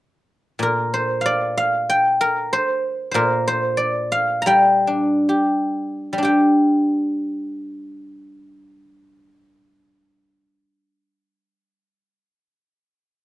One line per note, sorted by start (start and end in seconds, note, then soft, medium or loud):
0.59 2.54 A#2 soft
0.59 2.20 A#4 medium
0.94 2.52 C5 medium
1.21 1.57 F5 medium
1.26 3.10 D5 medium
1.57 3.24 F5 medium
1.90 3.45 G5 medium
2.21 3.15 A#4 medium
2.53 3.11 C5 medium
3.11 5.28 A#2 soft
3.11 5.28 A#4 medium
3.11 3.47 C5 medium
3.48 5.46 C5 medium
3.77 5.62 D5 medium
4.12 5.78 F5 medium
4.42 5.82 A#5 medium
4.46 6.12 G3 medium
4.46 6.02 G5 medium
4.87 6.17 D4 soft
5.29 6.21 G4 soft
6.13 12.19 G3 soft
6.18 10.94 D4 soft
6.23 10.31 G4 soft
6.23 10.29 G5 medium